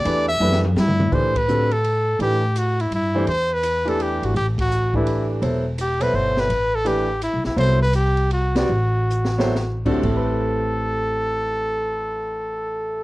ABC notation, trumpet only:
X:1
M:3/4
L:1/8
Q:"Swing" 1/4=167
K:Amix
V:1 name="Trumpet"
d e2 z E2 | [K:Ador] c B2 A3 | G2 F E E2 | c B2 A G F |
G F2 E2 z | z2 G B c B- | B A G2 E E | c B G2 F F- |
F4- F z | A6- | A6 |]